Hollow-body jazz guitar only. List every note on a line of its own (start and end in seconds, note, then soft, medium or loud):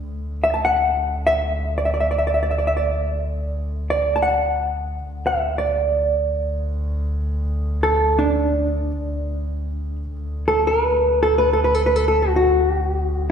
0.44 0.54 E5 medium
0.54 0.61 A5 medium
0.65 1.28 F#5 medium
1.27 1.77 E5 medium
1.78 1.85 D5 medium
1.85 1.93 E5 medium
1.94 2.00 D5 medium
2.00 2.08 E5 medium
2.11 2.18 D5 medium
2.18 2.26 E5 medium
2.27 2.34 D5 medium
2.34 2.41 E5 medium
2.43 2.50 D5 medium
2.51 2.58 E5 medium
2.58 2.66 D5 medium
2.67 2.74 E5 medium
2.77 3.19 D5 medium
3.90 4.16 D5 medium
4.16 4.22 A5 medium
4.22 5.34 F#5 medium
5.27 5.58 E5 medium
5.58 7.24 D5 medium
7.83 8.18 A4 medium
8.19 9.96 D4 medium
10.48 10.67 A4 medium
10.67 11.22 B4 medium
11.23 11.38 A4 medium
11.38 11.52 B4 medium
11.53 11.64 A4 medium
11.64 11.74 B4 medium
11.74 11.86 A4 medium
11.86 11.96 B4 medium
11.96 12.07 A4 medium
12.08 12.23 A4 medium
12.22 12.35 F#4 medium
12.36 13.29 F#4 medium